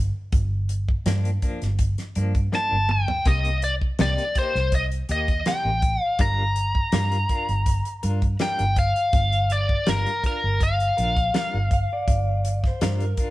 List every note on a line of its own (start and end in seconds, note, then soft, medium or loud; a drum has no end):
0.00 0.10 G1 medium
0.32 0.95 G1 medium
0.32 kick loud
0.32 closed hi-hat medium
0.69 closed hi-hat medium
0.89 kick medium
1.06 1.37 G2 medium
1.06 1.29 G2 medium
1.06 1.29 F3 medium
1.06 1.30 A#3 medium
1.06 1.30 D4 loud
1.06 snare medium
1.06 closed hi-hat medium
1.25 closed hi-hat soft
1.42 1.67 F3 soft
1.42 1.66 A#3 medium
1.42 1.66 D4 medium
1.42 kick medium
1.42 closed hi-hat soft
1.62 1.94 G1 medium
1.62 snare soft
1.62 closed hi-hat soft
1.79 kick medium
1.79 closed hi-hat medium
1.98 snare soft
1.98 closed hi-hat soft
2.15 2.48 G2 medium
2.15 2.40 F3 soft
2.15 2.40 A#3 medium
2.15 2.39 D4 medium
2.15 closed hi-hat medium
2.35 kick medium
2.35 closed hi-hat soft
2.52 2.75 G2 medium
2.52 2.76 F3 medium
2.52 2.76 A#3 medium
2.52 2.76 D4 medium
2.52 2.92 A5 medium
2.52 snare medium
2.72 3.04 G1 medium
2.89 3.28 G5 medium
2.89 mid tom medium
3.08 floor tom medium
3.25 3.89 C2 medium
3.25 3.49 C3 medium
3.25 3.49 A#3 medium
3.25 3.49 D#4 medium
3.25 3.50 G4 medium
3.25 3.61 D#5 medium
3.25 kick loud
3.25 closed hi-hat medium
3.45 closed hi-hat soft
3.62 3.74 D5 medium
3.62 closed hi-hat medium
3.82 kick medium
3.99 4.16 C2 medium
3.99 4.22 C3 medium
3.99 4.23 A#3 medium
3.99 4.23 D#4 medium
3.99 4.23 G4 medium
3.99 4.38 D5 medium
3.99 snare loud
3.99 closed hi-hat medium
4.18 closed hi-hat soft
4.35 4.60 A#3 soft
4.35 4.60 D#4 soft
4.35 4.59 G4 soft
4.35 4.72 C5 medium
4.35 muted fingered electric bass stroke soft
4.35 kick medium
4.35 closed hi-hat medium
4.55 5.02 C2 medium
4.55 snare soft
4.72 4.85 D#5 medium
4.72 kick medium
4.72 closed hi-hat medium
4.91 closed hi-hat soft
5.09 5.41 D#2 medium
5.09 5.33 A#3 soft
5.09 5.33 D#4 medium
5.09 5.32 G4 medium
5.09 5.48 D#5 medium
5.09 closed hi-hat medium
5.28 kick medium
5.28 closed hi-hat soft
5.46 5.69 C3 medium
5.46 5.69 A#3 medium
5.46 5.70 D#4 medium
5.46 5.70 G4 medium
5.46 6.03 G5 medium
5.46 snare loud
5.46 closed hi-hat medium
5.65 5.97 A1 medium
5.82 kick medium
5.82 closed hi-hat medium
6.03 6.22 F5 medium
6.19 6.82 G1 medium
6.19 6.42 G3 medium
6.19 6.43 D4 medium
6.19 6.43 F4 medium
6.19 6.43 A#4 medium
6.19 8.37 A#5 loud
6.19 kick loud
6.19 closed hi-hat medium
6.56 closed hi-hat medium
6.75 kick medium
6.92 7.24 G2 medium
6.92 7.16 G3 medium
6.92 7.16 D4 medium
6.92 7.16 F4 medium
6.92 7.17 A#4 medium
6.92 snare loud
6.92 closed hi-hat medium
7.12 closed hi-hat soft
7.29 7.54 D4 soft
7.29 7.53 F4 medium
7.29 7.52 A#4 medium
7.29 kick medium
7.29 closed hi-hat medium
7.49 7.80 G1 medium
7.49 closed hi-hat soft
7.66 kick medium
7.66 closed hi-hat medium
7.85 closed hi-hat soft
8.03 8.35 G2 medium
8.03 8.27 D4 medium
8.03 8.27 F4 medium
8.03 8.26 A#4 medium
8.03 closed hi-hat medium
8.22 kick medium
8.22 closed hi-hat soft
8.39 8.63 G3 medium
8.39 8.63 D4 medium
8.39 8.63 F4 medium
8.39 8.64 A#4 medium
8.39 8.78 G5 loud
8.39 snare loud
8.39 closed hi-hat medium
8.59 8.91 G1 medium
8.59 closed hi-hat soft
8.76 9.53 F5 medium
8.76 kick medium
8.76 closed hi-hat medium
8.96 closed hi-hat soft
9.13 9.76 G1 medium
9.13 kick loud
9.13 closed hi-hat medium
9.32 closed hi-hat soft
9.50 9.89 D5 medium
9.50 closed hi-hat medium
9.69 kick medium
9.87 10.04 G1 medium
9.87 10.10 G3 medium
9.87 10.10 D4 medium
9.87 10.10 F4 medium
9.87 10.11 A#4 medium
9.87 10.22 A#4 medium
9.87 snare loud
9.87 closed hi-hat medium
10.06 closed hi-hat soft
10.24 10.47 D4 soft
10.24 10.47 F4 soft
10.24 10.46 A#4 medium
10.24 10.63 A#4 medium
10.24 muted fingered electric bass stroke soft
10.24 kick medium
10.24 closed hi-hat medium
10.44 10.90 G1 medium
10.61 13.30 F5 medium
10.61 kick medium
10.61 closed hi-hat medium
10.80 closed hi-hat soft
10.97 11.29 A#1 medium
10.97 11.21 D4 soft
10.97 11.21 F4 soft
10.97 11.20 A#4 medium
10.97 closed hi-hat medium
11.17 kick medium
11.17 closed hi-hat soft
11.34 11.57 G3 medium
11.34 11.57 D4 medium
11.34 11.57 F4 medium
11.34 11.58 A#4 medium
11.34 snare loud
11.34 closed hi-hat medium
11.54 11.85 G1 medium
11.71 11.91 F5 medium
11.71 kick medium
11.71 closed hi-hat medium
11.93 12.63 D5 medium
12.08 12.70 G1 medium
12.08 kick loud
12.08 closed hi-hat medium
12.45 closed hi-hat medium
12.64 13.01 C5 medium
12.64 kick medium
12.64 snare soft
12.81 13.13 G2 medium
12.81 13.04 G3 medium
12.81 13.04 D4 medium
12.81 13.04 F4 medium
12.81 13.05 A#4 medium
12.81 snare loud
12.81 closed hi-hat medium
13.00 13.30 A#4 medium
13.00 closed hi-hat soft
13.17 13.30 D4 soft
13.17 13.30 F4 soft
13.17 13.30 A#4 medium
13.17 kick medium
13.17 closed hi-hat medium